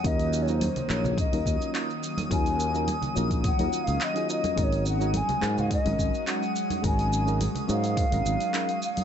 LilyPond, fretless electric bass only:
\new Staff \with { instrumentName = "Fretless electric bass" } { \clef bass \time 4/4 \key aes \dorian \tempo 4 = 106 ees,4 r8 bes,,8 r16 ees,16 ees,16 r4 r16 | ees,4 r8 bes,,8 r16 ees,16 r16 des,16 r4 | aes,,4 r8 aes,8 r16 aes,,16 aes,,16 r4 r16 | aes,,4 r8 aes,8 r16 aes,,16 aes,,16 r4 r16 | }